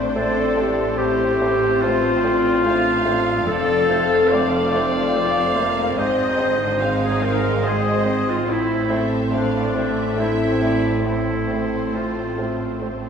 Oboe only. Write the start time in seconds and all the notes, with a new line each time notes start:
0.16 A4
0.99 G4
1.82 F4
3.49 A4
4.34 D5
5.99 C5
7.03 G#4
7.25 A#4
7.67 G#4
8.29 F4
8.51 E4
9.34 D4
10.20 E4
11.07 E4
11.95 F4